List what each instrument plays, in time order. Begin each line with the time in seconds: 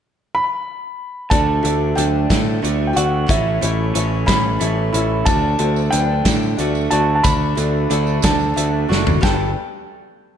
0.35 grand piano B5
1.30 picked electric bass D2, steel-string acoustic guitar D3 A3 D4 F#4, upright piano F#4 A4 D5, grand piano A5, kick, closed hi-hat
1.63 picked electric bass D2, steel-string acoustic guitar A3 D4 F#4, upright piano F#4 A4 D5, closed hi-hat
1.95 picked electric bass D2, steel-string acoustic guitar D3 A3 D4, upright piano F#3 A4 D5, grand piano G5, closed hi-hat
2.30 picked electric bass A2, steel-string acoustic guitar D3 A3 D4, kick, snare, closed hi-hat
2.62 picked electric bass D2, steel-string acoustic guitar D3 A3 D4 F#4, upright piano F#4 A4 D5, closed hi-hat
2.87 grand piano G5
2.93 picked electric bass D2, steel-string acoustic guitar A3 D4 F#4, upright piano F#4 A4 D5, grand piano F#5, closed hi-hat
3.26 picked electric bass A1, steel-string acoustic guitar A2 E3 A3 C#4 E4, upright piano E4 A4 C#5, grand piano E5, kick, closed hi-hat
3.61 picked electric bass A1, steel-string acoustic guitar A3 C#4 E4, upright piano E4 A4 C#5, closed hi-hat
3.94 picked electric bass A1, steel-string acoustic guitar E3 A3 C#4 E4, upright piano E4 A4 C#5, closed hi-hat
4.26 picked electric bass A1, steel-string acoustic guitar A2 E3 A3 C#4 E4, grand piano B5, kick, snare, closed hi-hat
4.59 picked electric bass A1, steel-string acoustic guitar E3 A3 C#4 E4, upright piano E4 A4 C#5, closed hi-hat
4.93 picked electric bass A1, steel-string acoustic guitar A3 C#4 E4, upright piano E4 A4 C#5, closed hi-hat
5.25 picked electric bass D2, steel-string acoustic guitar D3 A3 D4 F#4, upright piano F#4 A4 D5, grand piano A5, kick, closed hi-hat, tambourine
5.59 picked electric bass D2, steel-string acoustic guitar A3 D4 F#4, upright piano F#4 A4 C5, closed hi-hat
5.76 tambourine
5.91 picked electric bass D2, steel-string acoustic guitar D3 A3 D4, upright piano F#3 A4 B4, grand piano G5, closed hi-hat, tambourine
6.25 picked electric bass A2, steel-string acoustic guitar D3 A3 D4, kick, snare, closed hi-hat, tambourine
6.43 tambourine
6.57 picked electric bass D2, steel-string acoustic guitar D3 A3 D4 F#4, upright piano F#4 A4 D5, closed hi-hat, tambourine
6.75 tambourine
6.91 picked electric bass D2, steel-string acoustic guitar A3 D4 F#4, upright piano F#4 A4 D5, grand piano A5, closed hi-hat
7.15 grand piano A5
7.23 picked electric bass D2, steel-string acoustic guitar D3 A3 D4 F#4, grand piano B5, kick, closed hi-hat, tambourine
7.55 picked electric bass D2, steel-string acoustic guitar A3 D4 F#4, upright piano F#4 A4 D5, closed hi-hat, tambourine
7.89 picked electric bass D2, steel-string acoustic guitar D3 A3 D4, upright piano F#4 A4 D5, closed hi-hat, tambourine
7.93 steel-string acoustic guitar F#4
8.07 tambourine
8.22 picked electric bass D2, steel-string acoustic guitar D3 A3 D4 F#4, grand piano A5, kick, snare, closed hi-hat, tambourine
8.40 tambourine
8.54 picked electric bass D2, steel-string acoustic guitar D3 A3 D4 F#4, upright piano F#4 A4 E5, closed hi-hat
8.88 picked electric bass F#1, steel-string acoustic guitar A3 D4 F#4, upright piano F#4 A4 D5, snare
9.06 floor tom, tambourine
9.21 picked electric bass G1, steel-string acoustic guitar G3 B3 D4 A4, upright piano G4 A4 B4, grand piano G5, kick, snare, tambourine